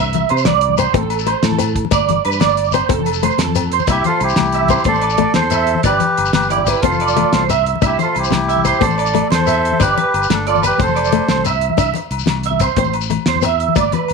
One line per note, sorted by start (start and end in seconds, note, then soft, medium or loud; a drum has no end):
0.00 0.24 C2 loud
0.00 0.16 D4 medium
0.00 0.28 E5 medium
0.13 closed hi-hat soft
0.13 low conga medium
0.13 shekere soft
0.29 0.44 C3 loud
0.29 0.45 C5 medium
0.29 closed hi-hat soft
0.29 low conga soft
0.29 low agogo medium
0.37 shekere medium
0.45 0.86 C2 medium
0.45 0.77 D5 medium
0.45 snare medium
0.45 closed hi-hat medium
0.45 high conga medium
0.45 low conga medium
0.45 low agogo medium
0.61 closed hi-hat soft
0.68 low conga medium
0.78 0.88 C4 medium
0.78 0.94 C5 medium
0.78 closed hi-hat soft
0.78 low agogo medium
0.78 shekere medium
0.94 1.34 A1 medium
0.94 1.14 C4 medium
0.94 1.25 A4 medium
0.94 kick medium
0.94 closed hi-hat medium
0.94 high conga medium
1.03 low conga medium
1.10 closed hi-hat soft
1.10 low agogo medium
1.10 shekere soft
1.18 shekere medium
1.27 1.46 A3 medium
1.27 1.43 C5 medium
1.27 closed hi-hat medium
1.27 low agogo medium
1.27 shekere soft
1.43 1.83 A2 loud
1.43 1.75 A4 medium
1.43 snare medium
1.43 closed hi-hat medium
1.43 high conga medium
1.43 shekere soft
1.51 low conga medium
1.59 1.78 C4 medium
1.59 closed hi-hat medium
1.59 low agogo medium
1.59 shekere medium
1.68 shekere soft
1.76 kick medium
1.76 closed hi-hat soft
1.85 low conga medium
1.91 2.18 G1 loud
1.91 2.23 D5 medium
1.91 muted steel-string acoustic guitar stroke medium
1.91 kick medium
1.91 closed hi-hat medium
1.91 high conga loud
1.91 low agogo medium
1.91 shekere medium
2.03 low conga soft
2.08 closed hi-hat soft
2.08 low conga loud
2.08 shekere soft
2.17 low conga soft
2.25 2.38 G2 medium
2.25 2.40 B4 medium
2.25 closed hi-hat soft
2.25 low agogo medium
2.32 low conga soft
2.32 shekere medium
2.40 2.81 G1 medium
2.40 2.72 D5 medium
2.40 snare medium
2.40 closed hi-hat medium
2.40 high conga medium
2.40 low conga medium
2.40 low agogo medium
2.40 shekere soft
2.49 low conga soft
2.49 shekere soft
2.56 closed hi-hat soft
2.56 shekere soft
2.65 shekere soft
2.72 2.84 C4 medium
2.72 2.89 C5 medium
2.72 closed hi-hat soft
2.72 low agogo medium
2.72 shekere medium
2.89 3.29 F1 medium
2.89 3.09 C4 medium
2.89 3.21 A4 medium
2.89 kick medium
2.89 closed hi-hat medium
2.89 high conga medium
3.00 low conga medium
3.06 closed hi-hat soft
3.06 low conga soft
3.06 low agogo medium
3.06 shekere soft
3.13 low conga soft
3.13 shekere medium
3.23 3.42 A3 medium
3.23 3.38 C5 medium
3.23 closed hi-hat soft
3.23 low conga medium
3.23 low agogo medium
3.23 shekere soft
3.30 shekere soft
3.38 3.78 F2 medium
3.38 3.70 A4 medium
3.38 snare medium
3.38 closed hi-hat medium
3.38 high conga medium
3.38 low conga soft
3.38 shekere soft
3.47 low conga medium
3.55 3.75 C4 medium
3.55 closed hi-hat medium
3.55 low agogo medium
3.55 shekere medium
3.72 3.88 C5 medium
3.72 closed hi-hat soft
3.79 low conga medium
3.79 shekere soft
3.87 4.01 C2 medium
3.87 4.07 D4 medium
3.87 4.04 E4 medium
3.87 4.06 G4 medium
3.87 4.04 E5 medium
3.87 kick medium
3.87 closed hi-hat medium
3.87 high conga medium
3.87 low agogo medium
3.87 shekere medium
4.04 4.21 F4 medium
4.04 4.23 A4 medium
4.04 4.36 C5 medium
4.04 closed hi-hat soft
4.04 low conga medium
4.04 shekere soft
4.20 4.34 C2 medium
4.20 4.83 E4 medium
4.20 4.84 G4 medium
4.20 closed hi-hat soft
4.20 low agogo medium
4.29 low conga soft
4.29 shekere medium
4.36 4.76 C2 medium
4.36 snare medium
4.36 closed hi-hat medium
4.36 high conga medium
4.36 low conga medium
4.36 low agogo medium
4.45 shekere soft
4.52 4.69 E5 medium
4.52 closed hi-hat soft
4.52 shekere soft
4.63 low conga medium
4.68 4.80 C4 medium
4.68 4.85 C5 medium
4.68 kick medium
4.68 closed hi-hat soft
4.68 low agogo medium
4.68 shekere medium
4.78 shekere soft
4.84 5.25 A1 medium
4.84 5.06 C4 medium
4.84 5.33 A4 medium
4.84 5.02 C5 medium
4.84 5.33 D5 loud
4.84 kick medium
4.84 closed hi-hat medium
4.84 high conga medium
4.94 low conga medium
4.94 shekere soft
5.01 5.34 D5 medium
5.01 closed hi-hat soft
5.01 low agogo medium
5.10 shekere medium
5.17 5.38 A3 medium
5.17 closed hi-hat soft
5.17 low conga medium
5.17 low agogo medium
5.34 5.75 E2 medium
5.34 5.81 A4 medium
5.34 5.50 C5 medium
5.34 5.81 C5 medium
5.34 snare medium
5.34 closed hi-hat medium
5.34 high conga medium
5.43 low conga medium
5.50 5.82 E5 medium
5.50 muted steel-string acoustic guitar stroke medium
5.50 closed hi-hat soft
5.50 low agogo medium
5.50 shekere medium
5.67 closed hi-hat soft
5.75 low conga medium
5.83 5.98 G1 medium
5.83 6.05 D4 medium
5.83 6.31 G4 medium
5.83 6.32 B4 medium
5.83 6.00 D5 medium
5.83 kick medium
5.83 closed hi-hat medium
5.83 high conga medium
5.83 low agogo medium
5.83 shekere medium
6.00 closed hi-hat soft
6.00 low conga medium
6.00 shekere soft
6.17 6.31 G1 medium
6.17 closed hi-hat soft
6.17 low agogo medium
6.25 low conga soft
6.25 shekere medium
6.33 6.74 G1 medium
6.33 6.48 G4 medium
6.33 6.50 B4 medium
6.33 snare medium
6.33 closed hi-hat medium
6.33 high conga medium
6.33 low conga medium
6.33 low agogo medium
6.42 shekere soft
6.49 6.63 E4 medium
6.49 6.62 G4 medium
6.49 6.66 D5 medium
6.49 closed hi-hat soft
6.49 shekere soft
6.58 low conga medium
6.63 6.81 E4 medium
6.63 6.80 G4 medium
6.63 kick medium
6.63 closed hi-hat soft
6.63 shekere medium
6.68 6.77 C4 medium
6.68 6.83 B4 medium
6.68 low agogo medium
6.75 shekere soft
6.81 7.23 F1 medium
6.81 7.04 C4 medium
6.81 7.44 F4 medium
6.81 7.44 A4 medium
6.81 6.99 C5 medium
6.81 kick medium
6.81 closed hi-hat medium
6.81 high conga medium
6.92 low conga medium
6.92 shekere soft
7.00 7.32 D5 medium
7.00 closed hi-hat soft
7.00 low agogo medium
7.08 shekere medium
7.16 7.36 A3 medium
7.16 closed hi-hat soft
7.16 low conga medium
7.16 low agogo medium
7.33 7.73 C2 medium
7.33 7.49 C5 medium
7.33 snare medium
7.33 closed hi-hat medium
7.33 high conga medium
7.41 low conga medium
7.50 7.69 C4 medium
7.50 7.81 E5 medium
7.50 closed hi-hat soft
7.50 low agogo medium
7.50 shekere medium
7.66 closed hi-hat soft
7.75 low conga medium
7.82 7.95 C2 medium
7.82 8.02 D4 medium
7.82 7.99 E4 medium
7.82 7.99 G4 medium
7.82 7.98 E5 medium
7.82 kick medium
7.82 closed hi-hat medium
7.82 high conga medium
7.82 low agogo medium
7.82 shekere medium
7.99 8.16 F4 medium
7.99 8.17 A4 medium
7.99 8.30 C5 medium
7.99 closed hi-hat soft
7.99 low conga medium
7.99 shekere soft
8.15 8.29 C2 medium
8.15 8.78 E4 medium
8.15 closed hi-hat soft
8.15 low agogo medium
8.19 8.85 G4 medium
8.24 low conga soft
8.24 shekere medium
8.31 8.72 C2 loud
8.31 snare medium
8.31 closed hi-hat medium
8.31 high conga medium
8.31 low conga medium
8.31 low agogo medium
8.48 8.64 E5 medium
8.48 closed hi-hat soft
8.48 shekere soft
8.56 low conga medium
8.65 8.75 C4 medium
8.65 8.80 C5 medium
8.65 kick medium
8.65 closed hi-hat soft
8.65 low agogo medium
8.65 shekere medium
8.73 shekere soft
8.81 9.21 A1 medium
8.81 9.01 C4 medium
8.81 9.27 A4 medium
8.81 8.97 C5 medium
8.81 9.28 D5 loud
8.81 kick medium
8.81 closed hi-hat medium
8.81 high conga medium
8.88 low conga medium
8.88 shekere soft
8.98 9.29 D5 medium
8.98 closed hi-hat soft
8.98 low agogo medium
9.06 shekere medium
9.14 9.34 A3 medium
9.14 closed hi-hat soft
9.14 low conga medium
9.14 low agogo medium
9.30 9.71 E2 medium
9.30 9.78 A4 medium
9.30 9.46 C5 medium
9.30 9.83 C5 medium
9.30 snare medium
9.30 closed hi-hat medium
9.30 high conga medium
9.39 low conga medium
9.46 9.67 C4 medium
9.46 9.78 E5 medium
9.46 closed hi-hat medium
9.46 low agogo medium
9.46 shekere medium
9.65 closed hi-hat soft
9.72 low conga medium
9.80 9.94 G1 medium
9.80 10.00 D4 medium
9.80 10.27 G4 medium
9.80 10.32 B4 medium
9.80 9.96 D5 medium
9.80 kick medium
9.80 closed hi-hat medium
9.80 high conga medium
9.80 low agogo medium
9.80 shekere medium
9.89 shekere soft
9.97 10.28 B4 medium
9.97 closed hi-hat soft
9.97 low conga medium
10.14 10.27 G1 medium
10.14 closed hi-hat soft
10.14 low agogo medium
10.23 shekere medium
10.30 10.70 G1 medium
10.30 10.47 D4 medium
10.30 10.46 A4 medium
10.30 snare medium
10.30 closed hi-hat medium
10.30 high conga medium
10.30 low conga medium
10.30 low agogo medium
10.47 10.63 F4 medium
10.47 10.64 A4 medium
10.47 10.62 D5 medium
10.47 closed hi-hat soft
10.47 low conga soft
10.47 shekere soft
10.55 low conga medium
10.55 shekere soft
10.62 10.78 B4 medium
10.62 10.81 B4 medium
10.62 muted steel-string acoustic guitar stroke medium
10.62 closed hi-hat soft
10.62 low agogo medium
10.62 shekere medium
10.67 10.80 G4 medium
10.72 shekere soft
10.78 11.20 F1 medium
10.78 10.99 C4 medium
10.78 10.95 C5 medium
10.78 kick medium
10.78 closed hi-hat medium
10.78 high conga medium
10.78 low conga soft
10.78 shekere soft
10.82 11.43 A4 medium
10.82 11.43 C5 medium
10.87 low conga medium
10.87 shekere soft
10.96 11.27 D5 medium
10.96 closed hi-hat soft
10.96 low agogo medium
10.96 shekere soft
11.05 shekere medium
11.12 11.32 A3 medium
11.12 closed hi-hat soft
11.12 low conga medium
11.12 low agogo medium
11.21 low conga soft
11.29 11.69 C2 medium
11.29 11.44 C5 medium
11.29 snare medium
11.29 closed hi-hat medium
11.29 high conga medium
11.29 shekere soft
11.36 low conga medium
11.44 11.65 C4 medium
11.44 11.77 E5 medium
11.44 closed hi-hat soft
11.44 low conga soft
11.44 low agogo medium
11.44 shekere medium
11.54 low conga soft
11.61 closed hi-hat soft
11.69 low conga medium
11.77 11.92 C2 medium
11.77 11.98 D4 medium
11.77 11.94 E5 medium
11.77 kick medium
11.77 closed hi-hat medium
11.77 high conga medium
11.77 low agogo medium
11.77 shekere medium
11.94 muted clean electric guitar stroke medium
11.94 closed hi-hat soft
11.94 low conga medium
11.94 shekere soft
12.11 12.24 C2 medium
12.11 closed hi-hat soft
12.11 low agogo medium
12.18 low conga soft
12.18 shekere medium
12.26 12.67 C2 medium
12.26 snare medium
12.26 closed hi-hat medium
12.26 high conga medium
12.26 low conga medium
12.26 low agogo medium
12.43 12.61 E5 medium
12.43 closed hi-hat soft
12.43 shekere soft
12.51 low conga medium
12.60 12.71 C4 medium
12.60 12.77 C5 medium
12.60 kick medium
12.60 closed hi-hat soft
12.60 low agogo medium
12.60 shekere medium
12.69 shekere soft
12.76 13.17 A1 medium
12.76 12.98 C4 medium
12.76 12.94 C5 medium
12.76 kick medium
12.76 closed hi-hat medium
12.76 high conga medium
12.84 low conga medium
12.84 shekere soft
12.93 closed hi-hat soft
12.93 low agogo medium
13.01 shekere medium
13.10 13.30 A3 medium
13.10 closed hi-hat soft
13.10 low conga medium
13.10 low agogo medium
13.26 13.67 E2 loud
13.26 13.43 C5 medium
13.26 snare medium
13.26 closed hi-hat medium
13.26 high conga loud
13.36 low conga medium
13.42 13.63 C4 medium
13.42 13.75 E5 medium
13.42 closed hi-hat soft
13.42 low agogo medium
13.42 shekere medium
13.60 closed hi-hat soft
13.68 low conga medium
13.76 13.90 G1 medium
13.76 13.92 D5 medium
13.76 muted steel-string acoustic guitar stroke medium
13.76 kick medium
13.76 closed hi-hat medium
13.76 high conga loud
13.76 low agogo medium
13.76 shekere medium
13.92 14.13 B4 medium
13.92 closed hi-hat soft
13.92 low conga loud
13.92 shekere soft
14.08 14.13 G1 medium
14.08 closed hi-hat soft
14.08 low agogo medium